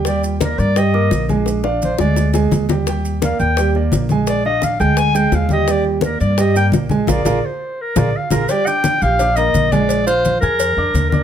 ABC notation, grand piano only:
X:1
M:4/4
L:1/8
Q:1/4=171
K:Eb
V:1 name="Grand piano"
[G,Gg]2 [B,Bd]2 [G,Gg] [B,Bd']2 [A,Aa]- | [A,Aa] [Ddf]2 [A,Aa]2 [A,Aa]2 [G,Gg] | [G,Gg]2 [B,Bd]2 [G,Gg] [B,Bd]2 [A,Aa]- | [A,Aa] [Ddf]2 [A,Aa]2 [A,Aa]2 [G,Gg] |
[G,Gg]2 [B,Bd]2 [G,Gg] [B,Bd]2 [A,Aa] | [FAB] [FAB] z3 [FAB] z [FAB] | [G,Gg] [Ddd']2 [Ggg'] [Ddd'] [B,Bb]2 [A,Aa]- | [A,Aa] [Fff']2 [Aaa']2 [Ddd']2 [Ddd'] |]